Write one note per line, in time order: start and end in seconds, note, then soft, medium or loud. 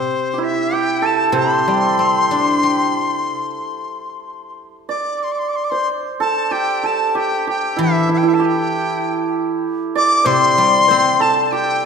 0.00 1.31 C3 medium
0.00 0.45 C5 medium
0.33 0.72 G4 medium
0.38 3.85 E4 medium
0.43 0.76 E5 medium
0.72 3.86 G4 medium
0.72 1.07 G5 loud
1.02 3.94 A4 medium
1.06 1.39 A5 medium
1.32 3.24 C3 medium
1.32 4.52 C5 medium
1.37 4.59 C6 loud
1.68 2.93 G3 soft
1.99 3.25 C4 soft
2.31 3.58 D4 soft
2.63 3.91 G4 soft
4.89 7.35 D5 medium
4.89 5.25 D6 medium
5.24 5.33 C6 medium
5.32 5.40 D6 medium
5.39 5.50 C6 medium
5.49 5.57 D6 medium
5.56 5.66 C6 medium
5.64 5.72 D6 medium
5.70 8.35 C5 medium
5.70 5.88 C6 loud
6.20 6.83 A4 medium
6.20 6.53 A5 loud
6.51 7.15 G4 medium
6.51 6.87 G5 loud
6.83 8.33 A4 medium
6.83 7.09 A5 loud
7.09 7.19 A5 medium
7.15 7.47 G4 medium
7.15 7.48 G5 medium
7.47 8.39 G4 medium
7.47 7.78 G5 medium
7.76 9.64 E3 medium
7.76 8.09 E4 medium
7.82 8.10 E5 medium
8.09 8.22 E4 medium
8.13 8.19 E5 medium
8.17 8.30 G5 medium
8.23 11.70 E4 medium
8.29 8.36 E5 medium
8.33 11.19 A4 medium
8.33 8.47 A5 medium
8.39 11.52 G4 medium
8.46 9.36 G5 medium
9.95 11.85 D5 loud
9.95 10.28 D6 loud
10.24 11.85 C3 medium
10.24 10.88 C5 medium
10.24 11.23 C6 loud
10.58 11.84 G3 medium
10.88 11.85 C4 medium
10.88 11.85 C5 medium
11.20 11.84 A4 medium
11.20 11.46 A5 loud
11.46 11.53 A5 medium
11.52 11.85 G4 medium
11.52 11.85 G5 loud